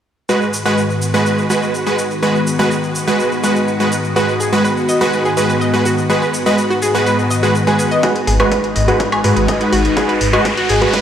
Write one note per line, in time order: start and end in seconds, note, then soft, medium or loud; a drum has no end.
0.29 7.99 G#2 medium
0.29 7.99 D#3 medium
0.29 0.47 G#3 medium
0.29 7.99 B3 medium
0.29 0.47 F#4 medium
0.29 7.99 F#4 medium
0.29 0.47 B4 medium
0.29 cabasa soft
0.42 cabasa soft
0.53 cabasa medium
0.66 0.76 G#3 loud
0.66 0.76 F#4 medium
0.66 0.76 B4 loud
0.66 cabasa soft
0.78 cabasa soft
0.90 cabasa soft
1.02 cabasa medium
1.14 1.47 G#3 medium
1.14 1.47 F#4 medium
1.14 1.47 B4 loud
1.14 cabasa soft
1.26 cabasa soft
1.38 cabasa soft
1.50 1.84 G#3 medium
1.50 1.84 F#4 medium
1.50 1.84 B4 medium
1.50 cabasa medium
1.63 cabasa soft
1.74 cabasa soft
1.87 1.97 G#3 medium
1.87 1.97 F#4 medium
1.87 1.97 B4 medium
1.87 cabasa soft
1.99 cabasa medium
2.11 cabasa soft
2.23 2.40 G#3 medium
2.23 2.40 F#4 medium
2.23 2.40 B4 medium
2.23 cabasa soft
2.35 cabasa soft
2.47 cabasa medium
2.59 2.70 G#3 loud
2.59 2.70 F#4 medium
2.59 2.70 B4 loud
2.59 cabasa soft
2.71 cabasa soft
2.84 cabasa soft
2.95 cabasa medium
3.08 3.41 G#3 medium
3.08 3.41 F#4 medium
3.08 3.41 B4 loud
3.08 cabasa soft
3.20 cabasa soft
3.32 cabasa soft
3.44 3.77 G#3 medium
3.44 3.77 F#4 medium
3.44 3.77 B4 medium
3.44 cabasa medium
3.56 cabasa soft
3.68 cabasa soft
3.80 3.91 G#3 medium
3.80 3.91 F#4 medium
3.80 3.91 B4 medium
3.80 cabasa soft
3.92 cabasa medium
4.04 cabasa soft
4.16 4.34 G#3 medium
4.16 4.19 F#4 medium
4.16 4.34 F#4 medium
4.16 4.34 B4 medium
4.16 cabasa soft
4.29 cabasa soft
4.40 4.43 G#4 medium
4.40 cabasa medium
4.53 4.63 G#3 medium
4.53 4.63 F#4 medium
4.53 4.63 B4 loud
4.53 cabasa soft
4.64 4.67 B4 medium
4.64 cabasa soft
4.77 cabasa soft
4.89 4.93 D#5 medium
4.89 cabasa medium
5.01 5.34 G#3 medium
5.01 5.34 F#4 medium
5.01 5.07 F#4 medium
5.01 5.34 B4 loud
5.01 cabasa soft
5.13 cabasa soft
5.25 5.32 G#4 medium
5.25 cabasa soft
5.37 5.71 G#3 medium
5.37 5.71 F#4 medium
5.37 5.71 B4 medium
5.37 cabasa medium
5.49 5.54 B4 medium
5.49 cabasa soft
5.61 5.64 D#5 medium
5.61 cabasa soft
5.74 5.84 G#3 medium
5.74 5.84 F#4 medium
5.74 5.84 B4 medium
5.74 cabasa soft
5.85 5.88 F#4 medium
5.85 cabasa medium
5.98 cabasa soft
6.10 6.27 G#3 medium
6.10 6.27 F#4 medium
6.10 6.12 G#4 medium
6.10 6.27 B4 medium
6.10 cabasa soft
6.22 6.28 B4 medium
6.22 cabasa soft
6.34 cabasa medium
6.46 6.57 G#3 medium
6.46 6.57 F#4 medium
6.46 6.57 B4 loud
6.46 6.50 D#5 medium
6.46 cabasa soft
6.58 cabasa soft
6.70 6.73 F#4 medium
6.70 cabasa soft
6.82 6.89 G#4 medium
6.82 cabasa medium
6.95 7.28 G#3 medium
6.95 7.28 F#4 medium
6.95 7.28 B4 loud
6.95 cabasa soft
7.06 7.11 B4 loud
7.06 cabasa soft
7.19 cabasa soft
7.31 7.35 D#5 medium
7.31 cabasa medium
7.43 7.54 G#3 medium
7.43 7.54 F#4 medium
7.43 7.49 G#4 medium
7.43 7.54 B4 medium
7.43 cabasa soft
7.55 cabasa soft
7.67 8.00 G#3 medium
7.67 8.00 F#4 medium
7.67 7.70 G#4 loud
7.67 8.00 B4 medium
7.67 cabasa soft
7.79 7.82 G#5 medium
7.79 cabasa medium
7.91 7.96 D#5 medium
7.91 cabasa soft
8.03 8.21 G#3 medium
8.03 11.01 G#3 medium
8.03 11.01 D#4 medium
8.03 8.06 F#4 medium
8.03 8.21 F#4 medium
8.03 11.01 F#4 medium
8.03 8.21 B4 medium
8.03 11.01 B4 medium
8.03 kick loud
8.03 closed hi-hat medium
8.03 riser medium
8.16 closed hi-hat soft
8.27 8.44 G#1 medium
8.27 8.30 G#4 medium
8.27 open hi-hat medium
8.40 8.50 G#3 loud
8.40 8.50 F#4 medium
8.40 8.50 B4 loud
8.40 closed hi-hat soft
8.40 high woodblock medium
8.52 8.54 B4 medium
8.52 kick loud
8.52 closed hi-hat medium
8.64 closed hi-hat soft
8.76 8.92 G#1 medium
8.76 8.80 D#5 medium
8.76 open hi-hat medium
8.88 9.21 G#3 medium
8.88 8.95 F#4 medium
8.88 9.21 F#4 medium
8.88 9.21 B4 loud
8.88 closed hi-hat soft
9.00 kick loud
9.00 closed hi-hat medium
9.12 9.19 G#4 medium
9.12 closed hi-hat soft
9.12 high woodblock medium
9.24 9.32 G#2 medium
9.24 9.58 G#3 medium
9.24 9.58 F#4 medium
9.24 9.58 B4 medium
9.24 open hi-hat medium
9.37 9.52 G#1 medium
9.37 9.41 B4 medium
9.37 closed hi-hat soft
9.48 9.51 D#5 medium
9.48 kick loud
9.48 closed hi-hat medium
9.61 9.71 G#3 medium
9.61 9.71 F#4 medium
9.61 9.71 B4 medium
9.61 closed hi-hat soft
9.73 9.89 G#1 medium
9.73 9.75 F#4 medium
9.73 open hi-hat medium
9.85 closed hi-hat soft
9.97 10.14 G#3 medium
9.97 10.14 F#4 medium
9.97 9.99 G#4 medium
9.97 10.14 B4 medium
9.97 kick loud
9.97 closed hi-hat medium
10.09 10.15 B4 medium
10.09 closed hi-hat soft
10.21 10.37 G#1 medium
10.21 open hi-hat loud
10.33 10.44 G#3 loud
10.33 10.44 F#4 medium
10.33 10.44 B4 loud
10.33 10.38 D#5 medium
10.33 closed hi-hat soft
10.33 high woodblock medium
10.45 kick loud
10.45 closed hi-hat medium
10.57 10.60 F#4 loud
10.57 closed hi-hat soft
10.69 10.85 G#1 medium
10.69 10.76 G#4 medium
10.69 open hi-hat medium
10.82 11.01 G#3 medium
10.82 11.01 F#4 medium
10.82 11.01 B4 loud
10.82 closed hi-hat soft
10.93 10.98 B4 loud
10.93 kick loud
10.93 closed hi-hat medium